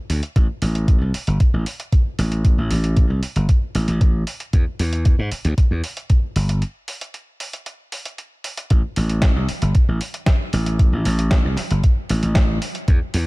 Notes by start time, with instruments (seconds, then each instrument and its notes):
0.10 slap bass D2, open hi-hat
0.23 closed hi-hat
0.36 slap bass A1, kick, closed hi-hat
0.62 slap bass A1, open hi-hat
0.75 closed hi-hat
0.88 kick, closed hi-hat
1.01 slap bass C2
1.14 muted slap bass stroke, open hi-hat
1.27 slap bass G1, closed hi-hat
1.40 kick, closed hi-hat
1.54 slap bass A1
1.66 open hi-hat
1.80 closed hi-hat
1.92 kick, closed hi-hat
2.19 slap bass A1, open hi-hat
2.32 closed hi-hat
2.45 kick, closed hi-hat
2.58 slap bass A1
2.71 slap bass A1, open hi-hat
2.84 closed hi-hat
2.97 kick, closed hi-hat
3.10 slap bass C2
3.23 muted slap bass stroke, open hi-hat
3.36 slap bass G1, closed hi-hat
3.49 kick, closed hi-hat
3.75 slap bass A1, open hi-hat
3.88 slap bass A1, closed hi-hat
4.01 kick, closed hi-hat
4.27 open hi-hat
4.40 closed hi-hat
4.53 slap bass E2, kick, closed hi-hat
4.79 slap bass E2, open hi-hat
4.93 closed hi-hat
5.05 kick, closed hi-hat
5.19 slap bass G#2
5.32 muted slap bass stroke, open hi-hat
5.45 slap bass D2, closed hi-hat
5.58 muted slap bass stroke, kick, closed hi-hat
5.71 slap bass E2
5.84 open hi-hat
5.97 closed hi-hat
6.10 kick, closed hi-hat
6.36 slap bass G1, open hi-hat
6.49 closed hi-hat
6.62 closed hi-hat
6.88 open hi-hat
7.01 closed hi-hat
7.14 closed hi-hat
7.40 open hi-hat
7.53 closed hi-hat
7.66 closed hi-hat
7.92 open hi-hat
8.05 closed hi-hat
8.18 closed hi-hat
8.44 open hi-hat
8.57 closed hi-hat
8.70 slap bass A1, kick, closed hi-hat
8.96 slap bass A1, open hi-hat
9.10 closed hi-hat
9.22 kick, snare, closed hi-hat
9.36 slap bass C2
9.49 muted slap bass stroke, open hi-hat
9.62 slap bass G1, closed hi-hat
9.75 muted slap bass stroke, kick, closed hi-hat
9.88 slap bass A1
10.01 open hi-hat
10.14 closed hi-hat
10.26 kick, snare, closed hi-hat
10.53 slap bass A1, open hi-hat
10.66 closed hi-hat
10.79 kick, closed hi-hat
10.93 slap bass A1
11.05 slap bass A1, open hi-hat
11.19 closed hi-hat
11.31 kick, snare, closed hi-hat
11.45 slap bass C2
11.57 snare, open hi-hat
11.71 slap bass G1, closed hi-hat
11.84 kick, closed hi-hat
12.09 slap bass A1, open hi-hat
12.23 slap bass A1, closed hi-hat
12.35 kick, snare, closed hi-hat
12.62 open hi-hat
12.75 closed hi-hat
12.88 slap bass E2, kick, closed hi-hat
13.14 slap bass E2, open hi-hat